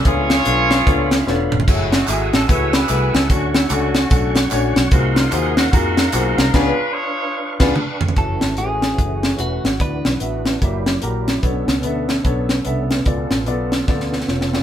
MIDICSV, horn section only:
0, 0, Header, 1, 2, 480
1, 0, Start_track
1, 0, Key_signature, 3, "minor"
1, 0, Tempo, 405132
1, 64, Time_signature, 4, 2, 24, 8
1, 9184, Tempo, 408163
1, 17271, End_track
2, 0, Start_track
2, 0, Title_t, "Horn section"
2, 0, Program_c, 0, 61
2, 74, Note_on_c, 0, 73, 127
2, 78, Note_on_c, 0, 68, 93
2, 80, Note_on_c, 0, 65, 98
2, 1759, Note_off_c, 0, 73, 0
2, 1761, Note_off_c, 0, 68, 0
2, 1762, Note_off_c, 0, 65, 0
2, 1989, Note_on_c, 0, 64, 81
2, 1992, Note_on_c, 0, 56, 65
2, 1994, Note_on_c, 0, 57, 65
2, 2263, Note_off_c, 0, 64, 0
2, 2287, Note_on_c, 0, 66, 88
2, 2469, Note_off_c, 0, 66, 0
2, 2473, Note_on_c, 0, 68, 91
2, 2766, Note_off_c, 0, 68, 0
2, 2766, Note_on_c, 0, 69, 98
2, 2902, Note_off_c, 0, 56, 0
2, 2903, Note_off_c, 0, 57, 0
2, 2936, Note_off_c, 0, 69, 0
2, 2951, Note_on_c, 0, 73, 105
2, 2953, Note_on_c, 0, 69, 75
2, 2959, Note_on_c, 0, 64, 77
2, 3230, Note_off_c, 0, 64, 0
2, 3243, Note_on_c, 0, 71, 114
2, 3245, Note_off_c, 0, 73, 0
2, 3245, Note_on_c, 0, 64, 72
2, 3249, Note_on_c, 0, 68, 85
2, 3718, Note_off_c, 0, 69, 0
2, 3723, Note_off_c, 0, 71, 0
2, 3732, Note_on_c, 0, 69, 80
2, 3862, Note_off_c, 0, 64, 0
2, 3864, Note_off_c, 0, 68, 0
2, 3912, Note_off_c, 0, 69, 0
2, 3917, Note_on_c, 0, 66, 91
2, 3919, Note_on_c, 0, 57, 63
2, 3920, Note_on_c, 0, 61, 66
2, 4187, Note_off_c, 0, 66, 0
2, 4217, Note_on_c, 0, 64, 80
2, 4388, Note_off_c, 0, 57, 0
2, 4389, Note_off_c, 0, 61, 0
2, 4394, Note_off_c, 0, 64, 0
2, 4402, Note_on_c, 0, 66, 94
2, 4403, Note_on_c, 0, 57, 63
2, 4403, Note_on_c, 0, 61, 59
2, 5170, Note_off_c, 0, 66, 0
2, 5307, Note_off_c, 0, 57, 0
2, 5307, Note_off_c, 0, 61, 0
2, 5828, Note_on_c, 0, 66, 87
2, 5836, Note_on_c, 0, 58, 62
2, 5836, Note_on_c, 0, 63, 71
2, 6102, Note_off_c, 0, 66, 0
2, 6126, Note_on_c, 0, 65, 88
2, 6308, Note_off_c, 0, 65, 0
2, 6308, Note_on_c, 0, 68, 91
2, 6593, Note_on_c, 0, 66, 96
2, 6602, Note_off_c, 0, 68, 0
2, 6742, Note_off_c, 0, 63, 0
2, 6743, Note_off_c, 0, 58, 0
2, 6768, Note_off_c, 0, 66, 0
2, 6783, Note_on_c, 0, 66, 105
2, 6788, Note_on_c, 0, 63, 72
2, 6791, Note_on_c, 0, 58, 74
2, 7512, Note_off_c, 0, 66, 0
2, 7563, Note_on_c, 0, 70, 101
2, 7699, Note_off_c, 0, 63, 0
2, 7700, Note_off_c, 0, 58, 0
2, 7746, Note_off_c, 0, 70, 0
2, 7746, Note_on_c, 0, 71, 113
2, 7750, Note_on_c, 0, 65, 76
2, 7751, Note_on_c, 0, 62, 84
2, 8215, Note_off_c, 0, 65, 0
2, 8221, Note_on_c, 0, 73, 114
2, 8226, Note_off_c, 0, 71, 0
2, 8226, Note_on_c, 0, 68, 79
2, 8229, Note_on_c, 0, 65, 82
2, 8662, Note_off_c, 0, 62, 0
2, 9000, Note_off_c, 0, 73, 0
2, 9141, Note_off_c, 0, 68, 0
2, 9142, Note_off_c, 0, 65, 0
2, 17271, End_track
0, 0, End_of_file